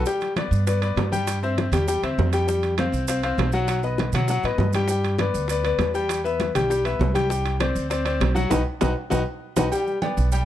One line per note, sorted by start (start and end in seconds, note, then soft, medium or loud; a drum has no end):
0.06 0.31 G3 medium
0.06 0.31 G4 medium
0.06 0.31 G5 medium
0.06 high bongo medium
0.06 high conga soft
0.06 maracas medium
0.21 high bongo soft
0.21 high conga soft
0.21 high timbale medium
0.21 maracas soft
0.36 0.61 B3 medium
0.36 0.62 B4 medium
0.36 0.62 D5 medium
0.36 high bongo medium
0.36 high conga medium
0.36 high timbale loud
0.36 low timbale medium
0.36 maracas soft
0.51 0.94 G2 medium
0.51 high conga soft
0.51 maracas medium
0.67 0.79 B3 medium
0.67 0.79 B4 medium
0.67 0.80 D5 medium
0.67 high bongo medium
0.67 high conga soft
0.67 high timbale medium
0.67 maracas loud
0.82 1.06 B3 medium
0.82 1.07 B4 medium
0.82 1.07 D5 medium
0.82 high bongo soft
0.82 high conga soft
0.82 high timbale medium
0.82 maracas soft
0.96 1.67 G2 medium
0.96 high bongo soft
0.96 low bongo medium
0.96 high conga medium
0.96 high timbale medium
0.96 low timbale medium
0.96 maracas soft
1.12 1.37 G3 medium
1.12 1.37 G4 medium
1.12 1.37 G5 medium
1.12 high bongo soft
1.12 high conga medium
1.12 maracas medium
1.27 high bongo medium
1.27 high conga soft
1.27 high timbale medium
1.27 maracas loud
1.43 1.67 C4 medium
1.43 1.68 C5 medium
1.43 1.68 E5 medium
1.43 high bongo soft
1.43 high conga soft
1.43 maracas soft
1.58 high bongo medium
1.58 high conga medium
1.58 high timbale medium
1.58 low timbale medium
1.58 maracas soft
1.72 2.00 E2 loud
1.72 1.85 G3 medium
1.72 1.85 G4 medium
1.72 1.85 G5 medium
1.72 high conga soft
1.72 low conga medium
1.72 high timbale medium
1.72 maracas medium
1.87 2.00 G3 medium
1.87 2.00 G4 medium
1.87 2.00 G5 medium
1.87 high bongo medium
1.87 high conga soft
1.87 maracas medium
2.03 2.17 D2 medium
2.03 2.28 C4 medium
2.03 2.28 C5 medium
2.03 2.28 E5 medium
2.03 high bongo soft
2.03 high conga soft
2.03 high timbale medium
2.03 maracas soft
2.18 2.88 F2 medium
2.18 high bongo soft
2.18 low bongo medium
2.18 high conga medium
2.18 low timbale medium
2.18 maracas soft
2.33 2.45 G3 medium
2.33 2.45 G4 medium
2.33 2.46 G5 medium
2.33 high bongo soft
2.33 high timbale medium
2.33 maracas medium
2.47 2.72 G3 medium
2.47 2.73 G4 medium
2.47 2.73 G5 medium
2.47 high bongo medium
2.47 high conga soft
2.47 maracas medium
2.63 high bongo soft
2.63 high conga soft
2.63 high timbale medium
2.63 maracas soft
2.78 3.03 C4 medium
2.78 3.03 C5 medium
2.78 3.03 F5 medium
2.78 high bongo medium
2.78 high conga medium
2.78 high timbale loud
2.78 low timbale medium
2.78 maracas soft
2.92 3.35 C2 medium
2.92 high conga soft
2.92 maracas medium
3.08 3.21 C4 medium
3.08 3.21 C5 medium
3.08 3.21 F5 medium
3.08 high bongo medium
3.08 high conga soft
3.08 high timbale medium
3.08 maracas loud
3.23 3.48 C4 medium
3.23 3.48 C5 medium
3.23 3.48 F5 medium
3.23 high bongo soft
3.23 high conga soft
3.23 high timbale medium
3.23 maracas soft
3.38 4.08 B1 medium
3.38 high bongo soft
3.38 low bongo medium
3.38 high conga medium
3.38 high timbale medium
3.38 low timbale medium
3.38 maracas soft
3.52 3.78 F#3 medium
3.52 3.78 F#4 medium
3.52 3.78 F#5 medium
3.52 high bongo soft
3.52 maracas medium
3.68 high bongo medium
3.68 high conga soft
3.68 high timbale medium
3.68 maracas medium
3.83 4.08 B3 medium
3.83 4.08 B4 medium
3.83 4.09 D#5 medium
3.83 high bongo soft
3.83 high conga soft
3.83 maracas soft
3.98 high bongo medium
3.98 high conga loud
3.98 high timbale medium
3.98 low timbale medium
3.98 maracas soft
4.12 4.41 B2 medium
4.12 4.26 F#3 medium
4.12 4.27 F#4 medium
4.12 4.27 F#5 medium
4.12 high conga soft
4.12 low conga medium
4.12 high timbale loud
4.12 maracas medium
4.28 4.42 F#3 medium
4.28 4.42 F#4 medium
4.28 4.42 F#5 medium
4.28 high bongo medium
4.28 high conga soft
4.28 maracas medium
4.43 4.57 A2 medium
4.43 4.69 B3 medium
4.43 4.69 B4 medium
4.43 4.69 D#5 medium
4.43 high bongo soft
4.43 high conga soft
4.43 high timbale medium
4.43 maracas soft
4.58 5.28 G2 medium
4.58 high bongo soft
4.58 low bongo medium
4.58 high conga medium
4.58 low timbale medium
4.58 maracas soft
4.73 4.87 G3 medium
4.73 4.87 G4 medium
4.73 4.87 G5 medium
4.73 high bongo soft
4.73 high conga medium
4.73 high timbale medium
4.73 maracas medium
4.88 5.14 G3 medium
4.88 5.14 G4 medium
4.88 5.15 G5 medium
4.88 high bongo medium
4.88 high conga soft
4.88 maracas loud
5.04 high bongo soft
5.04 high conga soft
5.04 high timbale medium
5.04 maracas soft
5.18 5.45 B3 medium
5.18 5.45 B4 medium
5.18 5.45 D5 medium
5.18 high bongo medium
5.18 high conga medium
5.18 high timbale medium
5.18 low timbale medium
5.18 maracas soft
5.34 5.76 D2 loud
5.34 high conga soft
5.34 maracas medium
5.48 5.62 B3 medium
5.48 5.63 B4 medium
5.48 5.63 D5 medium
5.48 high bongo medium
5.48 high conga soft
5.48 high timbale medium
5.48 maracas loud
5.63 5.89 B3 medium
5.63 5.89 B4 medium
5.63 5.90 D5 medium
5.63 high bongo soft
5.63 high conga soft
5.63 high timbale medium
5.63 maracas soft
5.78 6.49 E2 medium
5.78 high bongo soft
5.78 low bongo medium
5.78 high conga medium
5.78 high timbale medium
5.78 low timbale medium
5.78 maracas soft
5.94 6.19 G3 medium
5.94 6.20 G4 medium
5.94 6.20 G5 medium
5.94 high bongo soft
5.94 maracas medium
6.09 high bongo medium
6.09 high conga soft
6.09 high timbale loud
6.09 maracas medium
6.24 6.49 B3 medium
6.24 6.49 B4 medium
6.24 6.50 E5 medium
6.24 high bongo soft
6.24 high conga soft
6.24 maracas soft
6.40 high bongo medium
6.40 high conga loud
6.40 high timbale medium
6.40 low timbale medium
6.40 maracas soft
6.55 6.97 B1 medium
6.55 6.67 G3 medium
6.55 6.67 G4 medium
6.55 6.68 G5 medium
6.55 high conga soft
6.55 low conga medium
6.55 high timbale loud
6.55 maracas medium
6.70 6.82 G3 medium
6.70 6.83 G4 medium
6.70 6.83 G5 medium
6.70 high bongo medium
6.70 high conga soft
6.70 maracas loud
6.85 7.10 B3 medium
6.85 7.10 B4 medium
6.85 7.10 E5 medium
6.85 high bongo soft
6.85 high conga soft
6.85 high timbale medium
6.85 maracas soft
6.99 7.70 C2 medium
6.99 high bongo soft
6.99 low bongo medium
6.99 high conga medium
6.99 low timbale medium
6.99 maracas soft
7.14 7.27 G3 medium
7.14 7.27 G4 medium
7.14 7.28 G5 medium
7.14 high bongo soft
7.14 high conga medium
7.14 high timbale medium
7.14 maracas medium
7.30 7.55 G3 medium
7.30 7.55 G4 medium
7.30 7.55 G5 medium
7.30 high bongo medium
7.30 high conga soft
7.30 maracas loud
7.45 high bongo soft
7.45 high conga soft
7.45 high timbale medium
7.45 maracas soft
7.60 7.85 C4 medium
7.60 7.85 C5 medium
7.60 7.85 D5 medium
7.60 high bongo medium
7.60 high conga medium
7.60 high timbale loud
7.60 low timbale medium
7.60 maracas soft
7.75 8.18 D2 medium
7.75 high conga soft
7.75 maracas medium
7.90 8.03 C4 medium
7.90 8.03 C5 medium
7.90 8.03 D5 medium
7.90 high bongo medium
7.90 high conga soft
7.90 high timbale medium
7.90 maracas medium
8.05 8.30 C4 medium
8.05 8.30 C5 medium
8.05 8.31 D5 medium
8.05 high bongo soft
8.05 high conga soft
8.05 high timbale medium
8.05 maracas soft
8.20 8.49 B1 medium
8.20 high bongo soft
8.20 low bongo medium
8.20 high conga medium
8.20 high timbale loud
8.20 low timbale medium
8.20 maracas soft
8.35 8.48 F#3 medium
8.35 8.48 F#4 medium
8.35 8.48 F#5 medium
8.35 high bongo soft
8.35 high conga medium
8.35 maracas medium
8.50 8.62 B1 medium
8.50 8.60 D#4 loud
8.50 8.60 F#4 medium
8.50 8.60 B4 medium
8.50 low bongo loud
8.50 high conga loud
8.50 high timbale loud
8.50 maracas loud
8.81 8.93 B1 loud
8.81 8.91 D#4 medium
8.81 8.91 F#4 loud
8.81 8.91 B4 loud
8.81 low bongo loud
8.81 high conga loud
8.81 high timbale loud
8.81 maracas medium
9.10 9.23 B1 loud
9.10 9.20 D#4 loud
9.10 9.20 F#4 loud
9.10 9.21 B4 medium
9.10 low bongo loud
9.10 high conga medium
9.10 high timbale loud
9.10 maracas loud
9.56 9.68 B1 loud
9.56 9.66 D#4 medium
9.56 9.66 F#4 loud
9.56 9.66 B4 loud
9.56 low bongo loud
9.56 high conga loud
9.56 high timbale loud
9.56 maracas loud
9.72 9.97 G3 medium
9.72 9.97 G4 medium
9.72 9.97 G5 medium
9.72 high conga soft
9.72 low agogo medium
9.72 maracas medium
9.87 high conga soft
9.87 maracas soft
10.02 10.27 B3 medium
10.02 10.27 B4 medium
10.02 10.27 D5 medium
10.02 high conga loud
10.02 low timbale medium
10.02 low agogo loud
10.02 maracas soft
10.17 10.45 B1 loud
10.17 high conga soft
10.17 maracas medium
10.32 10.45 G3 medium
10.32 10.45 G4 medium
10.32 10.45 G5 medium
10.32 high conga soft
10.32 low agogo medium
10.32 maracas loud